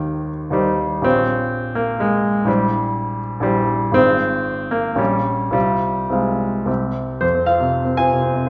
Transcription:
0.00 0.49 D#2 soft
0.00 0.30 D#3 medium
0.00 0.50 D#4 soft
0.00 0.50 G4 soft
0.00 0.51 C5 soft
0.50 1.01 D#2 soft
0.50 1.04 G3 medium
0.50 1.02 D#4 soft
0.50 1.02 G4 soft
0.50 1.03 C5 soft
1.01 2.42 A#1 soft
1.01 1.76 C4 medium
1.01 2.43 F4 soft
1.01 2.43 G4 soft
1.01 2.44 C#5 soft
1.75 2.00 A#3 medium
2.00 2.48 G#3 medium
2.45 3.39 A#1 soft
2.45 3.19 G3 medium
2.45 3.39 E4 soft
2.45 3.40 G4 soft
2.45 3.41 C5 soft
3.40 3.92 A#1 soft
3.40 3.95 G3 medium
3.40 3.92 E4 soft
3.40 3.93 G4 soft
3.40 3.92 C5 soft
3.91 4.94 G#1 soft
3.91 4.72 C4 medium
3.91 4.94 F4 soft
3.91 4.95 G#4 soft
3.91 4.95 C5 soft
4.71 4.98 A#3 medium
4.95 5.51 A#1 soft
4.95 5.51 G3 medium
4.95 5.51 C#4 soft
4.95 5.52 G4 soft
4.95 5.52 C#5 soft
5.51 6.08 C2 soft
5.51 6.11 G3 medium
5.51 6.08 C4 soft
5.51 6.09 F4 soft
5.51 6.09 F5 soft
6.09 6.64 C2 soft
6.09 6.69 G#3 soft
6.09 6.64 C4 soft
6.09 6.66 F4 soft
6.09 6.67 F5 soft
6.65 7.19 C2 soft
6.65 7.20 C4 soft
6.65 7.20 G4 soft
6.65 7.21 E5 soft
7.21 8.49 F2 soft
7.21 7.46 C5 medium
7.35 7.55 C4 soft
7.46 7.59 F4 soft
7.46 7.59 C5 soft
7.46 7.97 F5 medium
7.60 8.00 C3 soft
7.85 8.05 C4 soft
7.97 8.09 F4 soft
7.97 8.09 C5 soft
7.97 8.49 G#5 medium
8.11 8.30 C3 soft
8.22 8.41 C4 soft
8.34 8.49 C3 soft

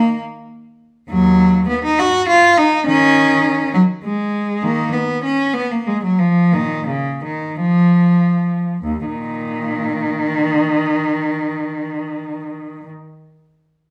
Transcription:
0.00 0.20 A#3 medium
1.09 1.65 D#2 medium
1.09 1.65 F#3 medium
1.69 1.84 B3 medium
1.84 1.98 D#4 medium
1.99 2.28 F#4 medium
2.28 2.57 F4 medium
2.57 2.86 D#4 medium
2.87 3.70 D#3 medium
2.87 3.73 C#4 loud
3.74 3.82 F#3 medium
4.04 4.62 G#3 medium
4.63 4.91 D#3 medium
4.63 4.93 A#3 medium
4.93 5.24 B3 medium
5.24 5.55 C#4 medium
5.54 5.71 B3 medium
5.71 5.87 A#3 medium
5.87 6.03 G#3 medium
6.04 6.20 F#3 medium
6.20 6.53 F3 medium
6.53 6.85 A#2 medium
6.53 6.88 D#3 medium
6.87 7.23 C#3 medium
7.24 7.60 D#3 medium
7.61 8.80 F3 medium
8.83 9.04 D#2 medium
9.05 10.63 A#2 medium
9.05 12.87 D#3 medium

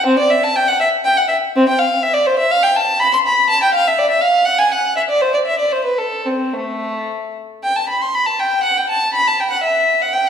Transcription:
0.06 0.19 C4 medium
0.19 0.31 D5 medium
0.30 0.43 E5 medium
0.44 0.56 A5 medium
0.56 0.68 G5 medium
0.68 0.80 F#5 medium
0.80 0.88 E5 medium
1.04 1.16 G5 medium
1.17 1.29 F#5 medium
1.28 1.36 E5 medium
1.56 1.68 C4 medium
1.69 1.80 G5 medium
1.78 2.03 F5 medium
2.03 2.15 E5 medium
2.14 2.27 D5 medium
2.26 2.39 C5 medium
2.39 2.51 E5 medium
2.51 2.64 F5 medium
2.63 2.76 G5 medium
2.76 3.01 A5 medium
2.99 3.13 B5 loud
3.13 3.18 C6 medium
3.26 3.51 B5 medium
3.50 3.62 A5 loud
3.63 3.75 G5 medium
3.74 3.87 F5 medium
3.87 4.00 E5 medium
3.99 4.12 D5 medium
4.10 4.23 E5 medium
4.21 4.47 F5 medium
4.45 4.59 F#5 medium
4.59 4.72 G#5 medium
4.72 4.97 F#5 medium
4.96 5.02 E5 medium
5.10 5.23 D5 medium
5.21 5.35 C5 medium
5.34 5.39 D5 medium
5.46 5.60 E5 medium
5.59 5.73 D5 medium
5.72 5.86 C5 medium
5.84 5.99 B4 medium
5.99 6.27 A4 medium
6.26 6.54 C4 medium
6.53 7.36 A3 medium
7.63 7.76 G5 medium
7.76 7.90 A5 medium
7.89 8.02 B5 medium
8.01 8.15 C6 medium
8.14 8.27 B5 medium
8.26 8.39 A5 medium
8.39 8.65 G5 medium
8.63 8.76 F#5 medium
8.77 8.90 G5 medium
8.90 9.14 A5 medium
9.14 9.26 B5 medium
9.27 9.39 A5 medium
9.40 9.52 G5 medium
9.51 9.63 F#5 medium
9.63 10.01 E5 medium
10.02 10.14 F#5 medium
10.13 10.26 G5 medium

